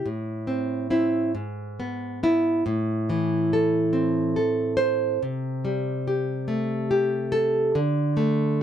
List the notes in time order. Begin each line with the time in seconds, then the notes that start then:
0.06 A2
0.47 C4
0.90 C4 E4
1.35 G#2
1.80 B3
2.23 B3 E4
2.66 A2
3.10 E3
3.53 A4
3.93 C4
4.36 A4
4.77 C5
5.23 C3
5.65 G3
6.08 G4
6.48 A3
6.91 G4
7.32 A4
7.75 D3
8.17 A3